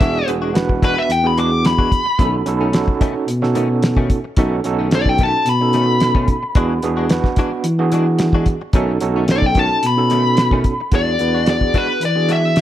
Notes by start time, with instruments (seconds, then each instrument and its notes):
Already playing: lead electric guitar E5
0.00 tuba E1, clean electric guitar E3 G#3 D4 F#4, tine electric piano B3 D4 F#4 G#4, kick, closed hi-hat
0.27 tuba E1, tine electric piano B3 D4 F#4 G#4, muted clean electric guitar stroke, closed hi-hat
0.42 clean electric guitar G#3 D4 F#4
0.54 tine electric piano B3 D4 F#4 B4, snare, closed hi-hat
0.69 muted clean electric guitar stroke, kick
0.83 clean electric guitar E3 G#3 D4 F#4, lead electric guitar B4, kick, snare, closed hi-hat
0.97 lead electric guitar E5, muted clean electric guitar stroke
1.10 tuba E2, lead electric guitar G5, closed hi-hat
1.24 tine electric piano B3 D4 F#4 G#4, lead electric guitar B5, muted clean electric guitar stroke
1.37 clean electric guitar E3 G#3 D4 F#4, lead electric guitar D6, closed hi-hat
1.65 lead electric guitar B5, snare, closed hi-hat
1.78 clean electric guitar E3 G#3 D4 F#4, kick
1.92 muted clean electric guitar stroke, kick, closed hi-hat
2.06 muted clean electric guitar stroke
2.19 tuba B1, clean electric guitar B2 D#3 A3 C#4, tine electric piano C#4 D#4 F#4 A4, kick, closed hi-hat
2.46 tuba B1, tine electric piano C#4 D#4 F#4 A4, muted clean electric guitar stroke, closed hi-hat
2.61 clean electric guitar D#3 A3 C#4
2.73 tine electric piano C#4 D#4 F#4 A4, muted clean electric guitar stroke, snare, closed hi-hat
2.88 muted clean electric guitar stroke, kick
3.01 clean electric guitar B2 D#3 A3 C#4, kick, closed hi-hat
3.15 muted clean electric guitar stroke
3.28 tuba B2, closed hi-hat
3.42 tine electric piano C#4 D#4 F#4 A4, muted clean electric guitar stroke, snare
3.55 clean electric guitar B2 D#3 A3 C#4, closed hi-hat
3.69 muted clean electric guitar stroke
3.83 snare, closed hi-hat
3.97 clean electric guitar B2 D#3 A3 C#4, kick
4.10 muted clean electric guitar stroke, kick, closed hi-hat
4.24 muted clean electric guitar stroke
4.37 tuba B1, clean electric guitar B2 D#3 A3 C#4, tine electric piano C#4 D#4 F#4 A4, kick, closed hi-hat
4.64 tuba B1, tine electric piano C#4 D#4 F#4 A4, muted clean electric guitar stroke, closed hi-hat
4.79 clean electric guitar D#3 A3 C#4
4.91 tine electric piano C#4 D#4 F#4 A4, lead electric guitar D5, snare, closed hi-hat
5.06 lead electric guitar G5, muted clean electric guitar stroke, kick
5.18 clean electric guitar B2 D#3 A3 C#4, kick, closed hi-hat
5.23 lead electric guitar A5
5.34 muted clean electric guitar stroke
5.46 tuba B2, lead electric guitar B5, closed hi-hat
5.60 tine electric piano C#4 D#4 F#4 A4, muted clean electric guitar stroke
5.73 clean electric guitar B2 D#3 A3 C#4, closed hi-hat
5.88 muted clean electric guitar stroke
6.00 snare, closed hi-hat
6.15 clean electric guitar B2 D#3 A3 C#4, kick
6.28 muted clean electric guitar stroke, kick, closed hi-hat
6.43 muted clean electric guitar stroke
6.55 tuba E2, clean electric guitar E3 G#3 D4 F#4, tine electric piano B3 D4 F#4 G#4, kick, closed hi-hat
6.83 tuba E2, tine electric piano B3 D4 F#4 G#4, muted clean electric guitar stroke, closed hi-hat
6.97 clean electric guitar G#3 D4 F#4
7.10 tine electric piano B3 D4 F#4 B4, snare, closed hi-hat
7.24 muted clean electric guitar stroke, kick, snare
7.36 clean electric guitar E3 G#3 D4 F#4, kick, closed hi-hat
7.52 muted clean electric guitar stroke
7.64 tuba E3, closed hi-hat
7.79 tine electric piano B3 D4 F#4 G#4, muted clean electric guitar stroke
7.92 clean electric guitar E3 G#3 D4 F#4, closed hi-hat
8.07 muted clean electric guitar stroke
8.19 snare, closed hi-hat
8.33 clean electric guitar E3 G#3 D4 F#4, kick
8.46 kick, closed hi-hat
8.62 muted clean electric guitar stroke
8.73 tuba B1, clean electric guitar B2 D#3 A3 C#4, tine electric piano C#4 D#4 F#4 A4, kick, closed hi-hat
9.01 tuba B1, tine electric piano C#4 D#4 F#4 A4, muted clean electric guitar stroke, closed hi-hat
9.16 clean electric guitar D#3 A3 C#4
9.28 tine electric piano C#4 D#4 F#4 A4, lead electric guitar D5, muted clean electric guitar stroke, snare, closed hi-hat
9.42 muted clean electric guitar stroke, kick
9.46 lead electric guitar G5
9.55 clean electric guitar B2 D#3 A3 C#4, kick, closed hi-hat
9.59 lead electric guitar A5
9.71 muted clean electric guitar stroke
9.83 tuba B2, lead electric guitar B5, closed hi-hat
9.97 tine electric piano C#4 D#4 F#4 A4, muted clean electric guitar stroke
10.10 clean electric guitar B2 D#3 A3 C#4, closed hi-hat
10.37 snare, closed hi-hat
10.51 clean electric guitar B2 D#3 A3 C#4, kick
10.64 muted clean electric guitar stroke, kick, closed hi-hat
10.80 muted clean electric guitar stroke
10.91 tuba E2, clean electric guitar E3 G#3 D4 F#4, tine electric piano B3 D4 F#4 G#4, lead electric guitar D5, kick, closed hi-hat
11.19 tuba E2, tine electric piano B3 D4 F#4 B4, muted clean electric guitar stroke, closed hi-hat
11.34 clean electric guitar G#3 D4 F#4
11.46 tine electric piano B3 D4 F#4 G#4, muted clean electric guitar stroke, snare, closed hi-hat
11.50 lead electric guitar D5
11.61 muted clean electric guitar stroke, kick
11.74 clean electric guitar E3 G#3 D4 F#4, lead electric guitar B4, kick, closed hi-hat
11.89 muted clean electric guitar stroke
12.01 tuba E3, lead electric guitar D5, closed hi-hat
12.15 tine electric piano B3 D4 F#4 G#4, muted clean electric guitar stroke
12.29 clean electric guitar E3 G#3 D4 F#4, lead electric guitar E5, closed hi-hat
12.43 muted clean electric guitar stroke
12.56 snare, closed hi-hat